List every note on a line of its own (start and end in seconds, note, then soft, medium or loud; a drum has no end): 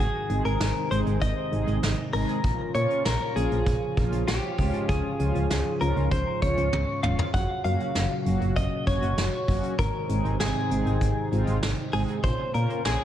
0.00 0.10 G#1 loud
0.00 2.42 G#2 medium
0.00 2.42 C3 medium
0.00 2.42 D#3 medium
0.00 2.42 C4 medium
0.00 2.42 D#4 medium
0.00 0.42 G#4 medium
0.30 0.41 G#1 loud
0.30 0.56 G#3 medium
0.30 0.56 C4 medium
0.30 0.56 D#4 medium
0.30 0.56 G#4 medium
0.30 closed hi-hat medium
0.45 0.56 G#1 loud
0.45 0.91 A#4 medium
0.45 closed hi-hat soft
0.60 0.72 G#1 loud
0.60 snare loud
0.60 closed hi-hat medium
0.91 1.02 G#1 loud
0.91 1.17 G#3 medium
0.91 1.17 C4 medium
0.91 1.17 D#4 medium
0.91 1.17 G#4 medium
0.91 0.99 C5 medium
0.91 closed hi-hat medium
1.06 1.18 G#1 loud
1.06 closed hi-hat soft
1.21 1.33 G#1 loud
1.21 2.13 D#5 medium
1.21 kick medium
1.21 closed hi-hat medium
1.52 1.64 G#1 loud
1.52 1.78 G#3 medium
1.52 1.78 C4 medium
1.52 1.78 D#4 medium
1.52 1.78 G#4 medium
1.52 closed hi-hat medium
1.67 1.79 G#1 loud
1.67 closed hi-hat medium
1.83 1.94 G#1 loud
1.83 snare loud
1.83 closed hi-hat medium
2.13 2.25 G#1 medium
2.13 2.40 G#3 medium
2.13 2.40 C4 medium
2.13 2.40 D#4 medium
2.13 2.40 G#4 medium
2.13 2.71 A#4 medium
2.13 open hi-hat medium
2.29 closed hi-hat soft
2.44 2.55 A#1 loud
2.44 4.56 A#2 medium
2.44 9.75 C#3 medium
2.44 7.30 F3 medium
2.44 7.30 C#4 medium
2.44 7.30 F4 medium
2.44 kick loud
2.44 closed hi-hat medium
2.75 2.86 A#2 loud
2.75 3.01 F3 medium
2.75 3.01 A#3 medium
2.75 3.01 C#4 medium
2.75 3.01 F4 medium
2.75 3.03 C#5 medium
2.75 closed hi-hat medium
2.90 closed hi-hat soft
3.05 3.17 A#1 loud
3.05 3.37 A#4 medium
3.05 snare loud
3.05 closed hi-hat medium
3.36 3.47 A#1 loud
3.36 3.62 F3 medium
3.36 3.62 A#3 medium
3.36 3.62 C#4 medium
3.36 3.62 F4 medium
3.36 4.27 G#4 medium
3.36 closed hi-hat medium
3.51 3.63 A#1 loud
3.51 closed hi-hat soft
3.66 3.78 A#1 loud
3.66 kick medium
3.66 closed hi-hat medium
3.97 4.08 A#1 loud
3.97 4.23 F3 medium
3.97 4.23 A#3 medium
3.97 4.23 C#4 medium
3.97 4.23 F4 medium
3.97 kick medium
3.97 closed hi-hat medium
4.12 4.24 A#1 medium
4.12 closed hi-hat medium
4.28 4.39 A#1 loud
4.28 4.88 G4 medium
4.28 snare loud
4.28 closed hi-hat medium
4.58 4.70 C#2 loud
4.58 7.31 G#2 medium
4.58 5.11 F3 medium
4.58 5.11 G#3 medium
4.58 5.11 C#4 medium
4.58 5.11 F4 medium
4.58 kick medium
4.58 open hi-hat medium
4.74 closed hi-hat soft
4.89 5.00 C#2 loud
4.89 5.77 G#4 loud
4.89 kick loud
4.89 closed hi-hat medium
5.20 5.31 C#2 loud
5.20 5.46 F3 medium
5.20 5.46 G#3 medium
5.20 5.46 C#4 medium
5.20 5.46 F4 medium
5.20 closed hi-hat medium
5.35 5.46 C#2 loud
5.35 closed hi-hat soft
5.50 5.62 C#2 loud
5.50 snare loud
5.50 closed hi-hat medium
5.81 5.92 C#2 loud
5.81 6.07 F3 medium
5.81 6.07 G#3 medium
5.81 6.07 C#4 medium
5.81 6.07 F4 medium
5.81 6.09 A#4 medium
5.81 closed hi-hat medium
5.96 6.08 C#2 loud
5.96 closed hi-hat soft
6.11 6.23 C#2 loud
6.11 6.40 C5 loud
6.11 kick medium
6.11 closed hi-hat medium
6.42 6.53 C#2 loud
6.42 6.68 F3 medium
6.42 6.68 G#3 medium
6.42 6.68 C#4 medium
6.42 6.68 F4 medium
6.42 6.99 C#5 loud
6.42 kick medium
6.42 closed hi-hat medium
6.57 6.69 C#2 loud
6.57 closed hi-hat medium
6.73 6.84 C#2 loud
6.73 high tom medium
7.03 7.15 D#1 loud
7.03 7.29 F3 medium
7.03 7.29 G#3 medium
7.03 7.29 C#4 medium
7.03 7.29 F4 medium
7.03 7.33 F5 medium
7.03 mid tom medium
7.19 floor tom medium
7.34 7.45 F#1 loud
7.34 9.77 A#2 medium
7.34 9.77 F#3 medium
7.34 9.77 C#4 medium
7.34 9.77 F#4 medium
7.34 7.62 F#5 loud
7.34 kick loud
7.34 closed hi-hat medium
7.64 7.76 F#2 loud
7.64 7.91 F#3 medium
7.64 7.91 A#3 medium
7.64 7.91 C#4 medium
7.64 7.91 F#4 medium
7.64 8.56 F5 loud
7.64 closed hi-hat medium
7.80 closed hi-hat soft
7.95 8.06 F#1 loud
7.95 snare loud
7.95 closed hi-hat medium
8.26 8.37 F#1 loud
8.26 8.52 F#3 medium
8.26 8.52 A#3 medium
8.26 8.52 C#4 medium
8.26 8.52 F#4 medium
8.26 closed hi-hat medium
8.41 8.52 F#1 loud
8.41 closed hi-hat soft
8.56 8.68 F#1 loud
8.56 8.87 D#5 loud
8.56 kick medium
8.56 closed hi-hat medium
8.87 8.98 F#1 loud
8.87 9.13 F#3 medium
8.87 9.13 A#3 medium
8.87 9.13 C#4 medium
8.87 9.13 F#4 medium
8.87 9.78 C#5 loud
8.87 kick medium
8.87 closed hi-hat medium
9.02 9.13 F#1 loud
9.02 closed hi-hat medium
9.18 9.29 F#1 loud
9.18 snare loud
9.18 closed hi-hat medium
9.48 9.59 F#1 medium
9.48 9.74 F#3 medium
9.48 9.74 A#3 medium
9.48 9.74 C#4 medium
9.48 9.74 F#4 medium
9.48 kick medium
9.48 open hi-hat medium
9.63 closed hi-hat soft
9.79 9.90 G#1 loud
9.79 12.21 G#2 medium
9.79 12.21 C3 medium
9.79 12.21 D#3 medium
9.79 12.21 C4 medium
9.79 12.21 D#4 medium
9.79 10.40 A#4 loud
9.79 kick loud
9.79 closed hi-hat medium
10.09 10.21 G#1 loud
10.09 10.36 G#3 medium
10.09 10.36 C4 medium
10.09 10.36 D#4 medium
10.09 10.36 G#4 medium
10.09 closed hi-hat medium
10.25 10.36 G#1 medium
10.25 closed hi-hat soft
10.40 10.51 G#1 loud
10.40 11.28 G#4 medium
10.40 snare loud
10.40 closed hi-hat medium
10.71 10.82 G#1 loud
10.71 10.97 G#3 medium
10.71 10.97 C4 medium
10.71 10.97 D#4 medium
10.71 10.97 G#4 medium
10.71 closed hi-hat medium
10.86 10.97 G#1 loud
10.86 closed hi-hat soft
11.01 11.12 G#1 loud
11.01 kick medium
11.01 closed hi-hat medium
11.32 11.43 G#1 loud
11.32 11.58 G#3 medium
11.32 11.58 C4 medium
11.32 11.58 D#4 medium
11.32 11.58 F4 loud
11.32 closed hi-hat medium
11.47 11.58 G#1 loud
11.47 closed hi-hat medium
11.62 11.74 G#1 loud
11.62 snare loud
11.62 closed hi-hat medium
11.93 12.04 G#1 loud
11.93 12.19 G#3 medium
11.93 12.19 C4 medium
11.93 12.19 D#4 medium
11.93 12.19 G#4 medium
11.93 12.01 G#4 medium
11.93 open hi-hat medium
12.08 closed hi-hat soft
12.24 12.35 A#1 loud
12.24 13.04 A#2 medium
12.24 13.04 C#3 medium
12.24 13.04 F3 medium
12.24 13.04 C#4 medium
12.24 13.04 F4 medium
12.24 12.52 C5 loud
12.24 kick loud
12.24 closed hi-hat medium
12.54 12.66 A#2 loud
12.54 12.80 A#3 medium
12.54 12.80 C#4 medium
12.54 12.80 F4 medium
12.54 12.80 A#4 medium
12.54 12.85 A#4 loud
12.54 closed hi-hat medium
12.70 closed hi-hat soft
12.85 12.96 A#1 loud
12.85 13.04 G#4 loud
12.85 snare loud
12.85 closed hi-hat medium